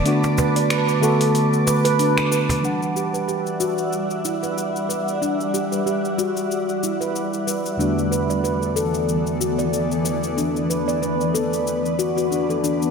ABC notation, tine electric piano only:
X:1
M:4/4
L:1/8
Q:"Swing 16ths" 1/4=93
K:Em
V:1 name="Tine electric piano"
[D,A,B,F]3 [D,A,B,F]4- [D,A,B,F] | [E,G,Df]8- | [E,G,Df]8 | [E,,D,A,B,F]8- |
[E,,D,A,B,F]8 |]